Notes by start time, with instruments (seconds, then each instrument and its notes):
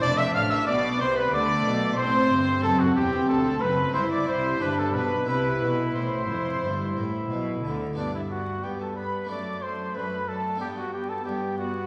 Already playing: harpsichord A3 C4
0.00 double bass section F1, harpsichord F2 D4, cello section F2, viola section D4, trumpet D5, violin section D5 D6
0.18 trumpet E5, violin section E5 E6
0.33 double bass section A1, harpsichord A2, cello section A2, trumpet F5, violin section F5 F6
0.51 trumpet E5, violin section E5 E6
0.65 double bass section B1, harpsichord B2, cello section B2, viola section B3, trumpet D5, violin section D5 D6
0.99 double bass section C2, cello section C3, harpsichord C3, violin section C5 C6, trumpet C5
1.17 violin section B4 B5, trumpet B4
1.31 double bass section D2, harpsichord D3, cello section D3, viola section A3, violin section D5 D6, trumpet D5
1.64 double bass section B1, harpsichord B2, cello section B2
1.96 double bass section A1, cello section A2, harpsichord A2, viola section C4, trumpet C5, violin section C5 C6
2.29 double bass section G1, harpsichord G2, cello section G2
2.59 double bass section F#1, cello section F#2, harpsichord A3 C4 D4, violin section A5
2.63 harpsichord F#2, trumpet A4, violin section A4
2.80 trumpet F#4, violin section F#4 F#5
2.95 double bass section E1, cello section E2, harpsichord E2, trumpet G4, violin section G4 G5
3.28 cello section D2, double bass section D2, harpsichord D2, trumpet A4, violin section A4 A5
3.61 double bass section F#1, cello section F#2, harpsichord F#2, trumpet B4, violin section B4 B5
3.92 double bass section G1, cello section G2, harpsichord G2 C4 E4, viola section E4, trumpet C5, violin section C6
3.97 violin section C5
4.11 trumpet D5, violin section D5 D6
4.27 double bass section C2, cello section C3, harpsichord C3, trumpet C5, violin section C5 C6
4.58 double bass section G1, cello section G2, harpsichord G2 D4 G4, viola section D4, violin section B5
4.62 trumpet B4, violin section B4
4.78 violin section A4 A5, trumpet A4
4.94 double bass section B1, cello section B2, harpsichord B2, trumpet B4, violin section B4 B5
5.26 double bass section C2, cello section C3, harpsichord C3 E4 G4, viola section E4, trumpet B4, violin section B4 B5
5.61 double bass section B1, cello section B2, harpsichord B2
5.94 double bass section A1, cello section A2, harpsichord A2, trumpet C5, violin section C5 C6
6.28 double bass section F1, cello section F2, harpsichord F2
6.62 double bass section G1, cello section G2, harpsichord G2
6.96 double bass section A1, cello section A2, harpsichord A2
7.29 double bass section B1, cello section B2, harpsichord B2
7.63 double bass section D2, cello section D3, harpsichord D3
7.93 cello section G2, harpsichord B3 D4 G4, viola section B3, trumpet D4
7.97 harpsichord G2, violin section D5
8.15 trumpet E4, violin section E5
8.31 viola section B3, trumpet F#4, violin section D5 F#5
8.63 cello section G2, harpsichord G2, viola section B3, trumpet G4, violin section D5 G5
8.80 trumpet A4, violin section A5
8.95 viola section B3, trumpet B4, violin section D5 B5
9.25 cello section F#2, harpsichord A3 D4
9.29 harpsichord F#2, viola section A3, violin section D5 D6, trumpet D5
9.61 viola section A3, trumpet C5, violin section D5 C6
9.94 cello section F#2, harpsichord F#2, viola section A3, trumpet B4, violin section D5 B5
10.27 viola section A3, trumpet A4, violin section D5 A5
10.56 harpsichord B3 D4
10.60 cello section G2, harpsichord G2, viola section B3, trumpet G4, violin section D5 G5
10.76 trumpet F#4, violin section F#5
10.92 viola section B3, trumpet G4, violin section D5 G5
11.09 trumpet A4, violin section A5
11.24 harpsichord G2, cello section G2, viola section B3, trumpet G4, violin section D5 G5
11.57 viola section B3, trumpet F#4, violin section D5 F#5